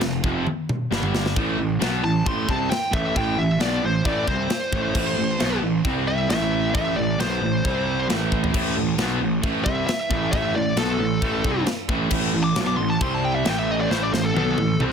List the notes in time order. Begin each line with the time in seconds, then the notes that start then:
0.01 F1 F2 C3, snare, china
0.23 F1 F2 C3 F3, kick
0.47 high tom
0.69 mid tom
0.91 G1 G2 D3 G3, snare
1.03 mid tom
1.15 snare
1.26 snare
1.35 A1 A2 E3 A3, kick, china
1.58 A1 A2 E3
1.80 B1 B2 F#3 B3, snare, china
2.02 A1 A2 E3 A5
2.25 A1 A2 E3 A3 C6, kick, china
2.47 C2 C3 G3 C4 A5, kick
2.70 G5, muted distorted electric guitar stroke, muted picked electric bass stroke, snare, china
2.91 A1 A2 E3 A3 E5, kick
3.15 A1 A2 E3 A3 G5, kick, china
3.37 A1 A2 E3 E5
3.59 B1 B2 F#3 B3 D5, snare, china
3.82 A1 A2 E3 C5
4.04 A1 A2 E3 A3 D5, kick, china
4.27 C2 C3 G3 C4 C5, kick
4.50 muted picked electric bass stroke, muted distorted electric guitar stroke, snare, china
4.72 A1 A2 E3 A3, kick
4.94 A1 A2 E3 A3, kick, china, crash
5.17 A1 A2 E3
5.38 B1 B2 F#3 B3, snare, china
5.62 A1 A2 E3
5.84 C2 C3 G3 C4, kick, china
6.08 E5
6.29 A1 A2 E3 A3 E5, snare, china
6.73 A1 A2 E3 A3 E5, kick, china
6.97 A1 A2 E3 D5
7.18 B1 B2 F#3 B3 C5, snare, china
7.41 A1 A2 E3
7.64 C2 C3 G3 C4, kick, china
8.08 A1 A2 E3 A3, snare, china
8.32 kick
8.44 floor tom
8.53 A1 A2 E3 A3, kick, crash, china
8.76 A1 A2 E3
8.98 B1 B2 F#3 B3, snare, china
9.20 A1 A2 E3
9.42 A1 A2 E3 A3, kick, china
9.65 C2 C3 G3 C4 E5, kick
9.87 E5, muted picked electric bass stroke, muted distorted electric guitar stroke, snare, china
10.10 A1 A2 E3 A3, kick
10.32 A1 A2 E3 A3 E5, kick, china
10.54 A1 A2 E3 D5
10.76 B1 B2 F#3 B3 A4, snare, china
10.99 A1 A2 E3
11.21 A1 A2 E3 A3, kick, china
11.44 C2 C3 G3 C4, kick
11.66 muted distorted electric guitar stroke, muted picked electric bass stroke, snare, china
11.89 A1 A2 E3 A3, kick
12.11 A1 A2 E3 A3, kick, crash, china
12.34 A1 A2 E3
12.44 D6
12.56 B1 B2 F#3 B3, snare, china
12.67 D6
12.77 A1 A2 E3 C6
12.90 A5
13.01 C2 C3 G3 C4 C6, kick, china
13.14 A5
13.25 G5
13.35 E5
13.45 A1 A2 E3 A3 G5, snare, china
13.59 E5
13.71 D#5
13.81 D5
13.90 A1 A2 E3 A3 C5, snare
14.03 D5
14.12 A1 A2 E3 C5, snare
14.25 A4
14.34 B1 B2 F#3 B3 A4, high tom
14.58 A1 A2 E3, high tom
14.79 C2 C3 G3 C4, mid tom